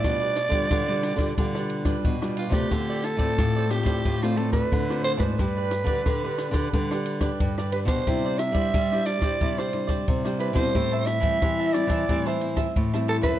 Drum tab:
RD |x-xxx-xxx-xxx-xx|x-xxx-xxx-xxx-xx|x-xxx-xxx-xxx-xx|x-xxx-xxx-xxx-xx|
SD |r-r-r-rr-r-r-r-r|r-r-r-rr-r-r-r-r|r-r-r-rr-r-r-r-r|r-r-r-rr-r-r-r-r|
BD |o--oo--oo--oo--o|o--oo--oo--oo--o|o--oo--oo--oo--o|o--oo--oo--oo--o|

RD |x-xxx-xxx-xxx-xx|
SD |r-r-r-rr-r-r-r-r|
BD |o--oo--oo--oo--o|